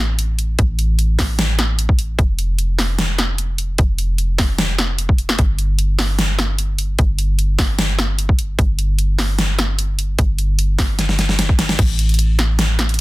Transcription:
Already playing: A1
0.19 closed hi-hat
0.39 closed hi-hat
0.59 A1, kick, closed hi-hat
0.79 closed hi-hat
0.99 closed hi-hat
1.19 kick, snare, open hi-hat
1.39 snare, closed hi-hat
1.59 snare, closed hi-hat
1.79 closed hi-hat
1.89 kick
1.99 closed hi-hat
2.19 F1, kick, closed hi-hat
2.39 closed hi-hat
2.59 closed hi-hat
2.79 snare, open hi-hat
2.99 snare, closed hi-hat
3.19 snare, closed hi-hat
3.38 closed hi-hat
3.58 closed hi-hat
3.78 F1, kick, closed hi-hat
3.98 closed hi-hat
4.18 closed hi-hat
4.38 kick, snare, open hi-hat
4.58 snare, closed hi-hat
4.78 snare, closed hi-hat
4.98 closed hi-hat
5.09 kick
5.18 closed hi-hat
5.29 snare
5.39 G1, kick, closed hi-hat
5.59 closed hi-hat
5.79 closed hi-hat
5.99 snare, open hi-hat
6.19 snare, closed hi-hat
6.39 snare, closed hi-hat
6.59 closed hi-hat
6.79 closed hi-hat
6.99 G1, kick, closed hi-hat
7.19 closed hi-hat
7.39 closed hi-hat
7.59 kick, snare, open hi-hat
7.79 snare, closed hi-hat
7.99 snare, closed hi-hat
8.19 closed hi-hat
8.29 kick
8.39 closed hi-hat
8.59 G1, kick, closed hi-hat
8.79 closed hi-hat
8.99 closed hi-hat
9.19 snare, open hi-hat
9.39 snare, closed hi-hat
9.59 snare, closed hi-hat
9.79 closed hi-hat
9.99 closed hi-hat
10.19 G1, kick, closed hi-hat
10.39 closed hi-hat
10.59 closed hi-hat
10.79 kick, snare, open hi-hat
10.99 snare, closed hi-hat
11.09 snare
11.19 snare, closed hi-hat
11.29 snare
11.39 snare, closed hi-hat
11.49 kick
11.59 snare, closed hi-hat
11.69 snare
11.79 A1, kick, closed hi-hat, crash
11.99 closed hi-hat
12.09 closed hi-hat
12.14 closed hi-hat
12.19 closed hi-hat
12.39 snare, closed hi-hat
12.59 snare, closed hi-hat
12.79 snare, closed hi-hat
12.89 closed hi-hat
12.94 closed hi-hat

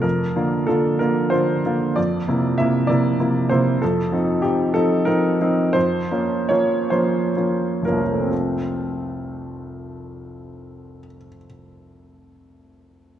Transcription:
0.02 F2 A#4
0.36 D3 A#3 F4
0.67 D3 A#3 F4 A4
0.99 D3 A#3 F4 A#4
1.30 D3 A#3 F4 C5
1.65 D3 A#3 F4
1.96 F2 D5
2.28 C3 A#3 E4
2.58 C3 A#3 E4 E5
2.87 C3 A#3 E4 D5
3.20 C3 A#3 E4
3.49 C3 A#3 E4 C5
3.82 F2 A4
4.12 F3 C4 D#4
4.42 F3 C4 D#4 G4
4.74 F3 C4 D#4 A4
5.05 F3 C4 D#4 A#4
5.41 F3 C4 D#4
5.73 F2 C5
6.11 F3 A#3 C#4
6.49 F3 A#3 C#4 C#5
6.90 F3 A#3 C#4 C5
7.37 F3 A#3 C#4
7.82 F1 A#4
7.87 F3 A#3 C#4
7.92 C2
8.02 F3
8.12 A3
8.21 C4
8.30 F4

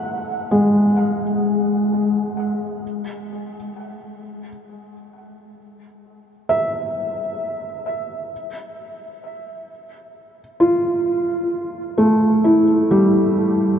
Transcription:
Already playing: A3 E5 F#5
0.51 G#3
6.49 E5
10.60 F4
11.98 A3
12.44 E4
12.91 G3

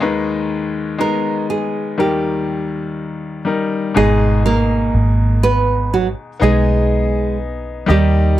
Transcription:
0.00 D#2 D#3 G#3 D#4 B4
0.99 G#3 B3 D#4 A#4
1.50 G#4
1.98 D#2 D#3 G3 D#4 G4 A#4
3.45 G3 D#4 A#4
3.94 G#1 G#2 B2 G#3 D#4 G#4 D#5
4.46 A#3 A#4
4.94 G#1
5.43 B3 B4
5.94 F#3 F#4
6.40 B1 G#3 B3 D#4 G#4 D#5
7.86 D#2 D#3 G3 D#4 G4 D#5

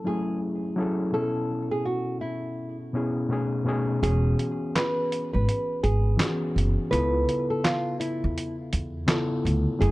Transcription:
Already playing: F#3 A3 C#4 E4 G#4
0.04 F#3 A3 C#4 E4 G#4
0.76 F#3 C#4 E4 G#4 A4
1.12 B2 B3 C#4 E4 G#4 A4
1.22 A4
1.71 G#4
1.85 F#4
2.21 E4
2.93 B2 B3 C#4 E4 G#4
3.29 B2 A3 C#4 D#4 G#4
3.65 B2 A3 C#4 D#4
3.69 G#4
4.03 E1 E3 B3 C#4 F#4 G#4, closed hi-hat
4.39 closed hi-hat
4.76 B4, snare, clap, closed hi-hat
5.12 closed hi-hat
5.33 G#1 B4
5.49 closed hi-hat
5.83 G#1 G#4, closed hi-hat
6.17 E3 B3 C#4 F#4 G#4, snare, clap
6.21 closed hi-hat
6.56 F#1, closed hi-hat
6.90 C#2 C#3 B3 E4 F4 A4 B4, closed hi-hat
7.29 closed hi-hat
7.50 A4
7.64 F4, snare, clap, closed hi-hat
8.00 E4, closed hi-hat
8.24 E2
8.38 closed hi-hat
8.73 E2, closed hi-hat
9.07 C#3 B3 E4 F4 A4, snare, clap, closed hi-hat
9.45 D2, closed hi-hat
9.79 F#1 F#3 A3 C#4 E4 G#4, closed hi-hat

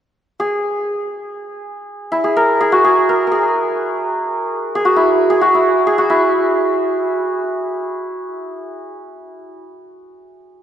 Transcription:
0.40 G#4
2.12 E4
2.24 G#4
2.37 A#4
2.61 G#4
2.72 F#4
2.84 G#4
3.09 A#4
3.27 A#4
3.32 G#4
4.75 G#4
4.85 F#4
4.96 E4
5.30 G#4
5.41 F#4
5.55 E4
5.87 G#4
5.98 F#4
6.10 E4

